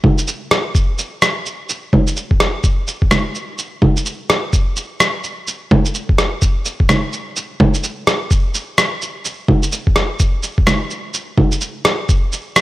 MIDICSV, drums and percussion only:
0, 0, Header, 1, 2, 480
1, 0, Start_track
1, 0, Tempo, 472441
1, 761, Time_signature, 4, 2, 24, 8
1, 12814, End_track
2, 0, Start_track
2, 0, Title_t, "Drums"
2, 38, Note_on_c, 9, 61, 64
2, 42, Note_on_c, 9, 36, 108
2, 139, Note_off_c, 9, 61, 0
2, 143, Note_off_c, 9, 36, 0
2, 186, Note_on_c, 9, 82, 54
2, 280, Note_off_c, 9, 82, 0
2, 280, Note_on_c, 9, 82, 54
2, 381, Note_off_c, 9, 82, 0
2, 520, Note_on_c, 9, 37, 107
2, 520, Note_on_c, 9, 82, 30
2, 622, Note_off_c, 9, 37, 0
2, 622, Note_off_c, 9, 82, 0
2, 761, Note_on_c, 9, 36, 116
2, 762, Note_on_c, 9, 82, 51
2, 862, Note_off_c, 9, 36, 0
2, 864, Note_off_c, 9, 82, 0
2, 1000, Note_on_c, 9, 82, 51
2, 1102, Note_off_c, 9, 82, 0
2, 1241, Note_on_c, 9, 37, 105
2, 1241, Note_on_c, 9, 82, 54
2, 1343, Note_off_c, 9, 37, 0
2, 1343, Note_off_c, 9, 82, 0
2, 1482, Note_on_c, 9, 82, 30
2, 1583, Note_off_c, 9, 82, 0
2, 1720, Note_on_c, 9, 82, 54
2, 1822, Note_off_c, 9, 82, 0
2, 1960, Note_on_c, 9, 36, 106
2, 1961, Note_on_c, 9, 61, 62
2, 2062, Note_off_c, 9, 36, 0
2, 2063, Note_off_c, 9, 61, 0
2, 2105, Note_on_c, 9, 82, 54
2, 2200, Note_off_c, 9, 82, 0
2, 2200, Note_on_c, 9, 82, 50
2, 2301, Note_off_c, 9, 82, 0
2, 2346, Note_on_c, 9, 36, 104
2, 2440, Note_on_c, 9, 37, 107
2, 2440, Note_on_c, 9, 82, 29
2, 2448, Note_off_c, 9, 36, 0
2, 2542, Note_off_c, 9, 37, 0
2, 2542, Note_off_c, 9, 82, 0
2, 2678, Note_on_c, 9, 82, 52
2, 2680, Note_on_c, 9, 36, 112
2, 2780, Note_off_c, 9, 82, 0
2, 2782, Note_off_c, 9, 36, 0
2, 2921, Note_on_c, 9, 82, 53
2, 3023, Note_off_c, 9, 82, 0
2, 3067, Note_on_c, 9, 36, 103
2, 3160, Note_on_c, 9, 37, 102
2, 3160, Note_on_c, 9, 61, 52
2, 3160, Note_on_c, 9, 82, 53
2, 3169, Note_off_c, 9, 36, 0
2, 3262, Note_off_c, 9, 37, 0
2, 3262, Note_off_c, 9, 61, 0
2, 3262, Note_off_c, 9, 82, 0
2, 3402, Note_on_c, 9, 82, 30
2, 3504, Note_off_c, 9, 82, 0
2, 3642, Note_on_c, 9, 82, 54
2, 3744, Note_off_c, 9, 82, 0
2, 3880, Note_on_c, 9, 61, 66
2, 3883, Note_on_c, 9, 36, 104
2, 3981, Note_off_c, 9, 61, 0
2, 3984, Note_off_c, 9, 36, 0
2, 4030, Note_on_c, 9, 82, 54
2, 4122, Note_off_c, 9, 82, 0
2, 4122, Note_on_c, 9, 82, 53
2, 4224, Note_off_c, 9, 82, 0
2, 4366, Note_on_c, 9, 37, 100
2, 4366, Note_on_c, 9, 82, 29
2, 4467, Note_off_c, 9, 37, 0
2, 4467, Note_off_c, 9, 82, 0
2, 4603, Note_on_c, 9, 82, 54
2, 4604, Note_on_c, 9, 36, 111
2, 4704, Note_off_c, 9, 82, 0
2, 4705, Note_off_c, 9, 36, 0
2, 4841, Note_on_c, 9, 82, 54
2, 4942, Note_off_c, 9, 82, 0
2, 5083, Note_on_c, 9, 37, 101
2, 5083, Note_on_c, 9, 82, 54
2, 5184, Note_off_c, 9, 37, 0
2, 5184, Note_off_c, 9, 82, 0
2, 5321, Note_on_c, 9, 82, 31
2, 5422, Note_off_c, 9, 82, 0
2, 5563, Note_on_c, 9, 82, 55
2, 5664, Note_off_c, 9, 82, 0
2, 5803, Note_on_c, 9, 61, 68
2, 5804, Note_on_c, 9, 36, 100
2, 5904, Note_off_c, 9, 61, 0
2, 5905, Note_off_c, 9, 36, 0
2, 5947, Note_on_c, 9, 82, 54
2, 6041, Note_off_c, 9, 82, 0
2, 6041, Note_on_c, 9, 82, 53
2, 6142, Note_off_c, 9, 82, 0
2, 6190, Note_on_c, 9, 36, 102
2, 6283, Note_on_c, 9, 37, 98
2, 6283, Note_on_c, 9, 82, 31
2, 6292, Note_off_c, 9, 36, 0
2, 6385, Note_off_c, 9, 37, 0
2, 6385, Note_off_c, 9, 82, 0
2, 6520, Note_on_c, 9, 82, 57
2, 6523, Note_on_c, 9, 36, 115
2, 6622, Note_off_c, 9, 82, 0
2, 6625, Note_off_c, 9, 36, 0
2, 6759, Note_on_c, 9, 82, 57
2, 6861, Note_off_c, 9, 82, 0
2, 6909, Note_on_c, 9, 36, 101
2, 7001, Note_on_c, 9, 37, 101
2, 7001, Note_on_c, 9, 61, 55
2, 7001, Note_on_c, 9, 82, 56
2, 7011, Note_off_c, 9, 36, 0
2, 7103, Note_off_c, 9, 37, 0
2, 7103, Note_off_c, 9, 61, 0
2, 7103, Note_off_c, 9, 82, 0
2, 7240, Note_on_c, 9, 82, 32
2, 7342, Note_off_c, 9, 82, 0
2, 7482, Note_on_c, 9, 82, 58
2, 7584, Note_off_c, 9, 82, 0
2, 7721, Note_on_c, 9, 61, 70
2, 7722, Note_on_c, 9, 36, 101
2, 7823, Note_off_c, 9, 61, 0
2, 7824, Note_off_c, 9, 36, 0
2, 7866, Note_on_c, 9, 82, 55
2, 7961, Note_off_c, 9, 82, 0
2, 7961, Note_on_c, 9, 82, 54
2, 8062, Note_off_c, 9, 82, 0
2, 8201, Note_on_c, 9, 37, 98
2, 8201, Note_on_c, 9, 82, 31
2, 8303, Note_off_c, 9, 37, 0
2, 8303, Note_off_c, 9, 82, 0
2, 8441, Note_on_c, 9, 36, 122
2, 8441, Note_on_c, 9, 82, 58
2, 8543, Note_off_c, 9, 36, 0
2, 8543, Note_off_c, 9, 82, 0
2, 8682, Note_on_c, 9, 82, 59
2, 8784, Note_off_c, 9, 82, 0
2, 8921, Note_on_c, 9, 37, 108
2, 8921, Note_on_c, 9, 82, 59
2, 9022, Note_off_c, 9, 37, 0
2, 9022, Note_off_c, 9, 82, 0
2, 9161, Note_on_c, 9, 82, 34
2, 9263, Note_off_c, 9, 82, 0
2, 9398, Note_on_c, 9, 82, 60
2, 9499, Note_off_c, 9, 82, 0
2, 9635, Note_on_c, 9, 61, 68
2, 9641, Note_on_c, 9, 36, 108
2, 9737, Note_off_c, 9, 61, 0
2, 9743, Note_off_c, 9, 36, 0
2, 9783, Note_on_c, 9, 82, 58
2, 9877, Note_off_c, 9, 82, 0
2, 9877, Note_on_c, 9, 82, 56
2, 9978, Note_off_c, 9, 82, 0
2, 10028, Note_on_c, 9, 36, 108
2, 10117, Note_on_c, 9, 37, 102
2, 10117, Note_on_c, 9, 82, 31
2, 10129, Note_off_c, 9, 36, 0
2, 10218, Note_off_c, 9, 37, 0
2, 10218, Note_off_c, 9, 82, 0
2, 10356, Note_on_c, 9, 82, 58
2, 10362, Note_on_c, 9, 36, 121
2, 10458, Note_off_c, 9, 82, 0
2, 10464, Note_off_c, 9, 36, 0
2, 10597, Note_on_c, 9, 82, 57
2, 10698, Note_off_c, 9, 82, 0
2, 10749, Note_on_c, 9, 36, 113
2, 10839, Note_on_c, 9, 37, 111
2, 10839, Note_on_c, 9, 61, 54
2, 10839, Note_on_c, 9, 82, 60
2, 10850, Note_off_c, 9, 36, 0
2, 10940, Note_off_c, 9, 37, 0
2, 10940, Note_off_c, 9, 61, 0
2, 10940, Note_off_c, 9, 82, 0
2, 11077, Note_on_c, 9, 82, 32
2, 11179, Note_off_c, 9, 82, 0
2, 11318, Note_on_c, 9, 82, 62
2, 11420, Note_off_c, 9, 82, 0
2, 11557, Note_on_c, 9, 61, 67
2, 11564, Note_on_c, 9, 36, 111
2, 11659, Note_off_c, 9, 61, 0
2, 11665, Note_off_c, 9, 36, 0
2, 11701, Note_on_c, 9, 82, 57
2, 11797, Note_off_c, 9, 82, 0
2, 11797, Note_on_c, 9, 82, 59
2, 11898, Note_off_c, 9, 82, 0
2, 12039, Note_on_c, 9, 37, 110
2, 12039, Note_on_c, 9, 82, 32
2, 12140, Note_off_c, 9, 37, 0
2, 12140, Note_off_c, 9, 82, 0
2, 12283, Note_on_c, 9, 82, 58
2, 12284, Note_on_c, 9, 36, 124
2, 12385, Note_off_c, 9, 36, 0
2, 12385, Note_off_c, 9, 82, 0
2, 12523, Note_on_c, 9, 82, 56
2, 12624, Note_off_c, 9, 82, 0
2, 12762, Note_on_c, 9, 37, 113
2, 12762, Note_on_c, 9, 82, 58
2, 12814, Note_off_c, 9, 37, 0
2, 12814, Note_off_c, 9, 82, 0
2, 12814, End_track
0, 0, End_of_file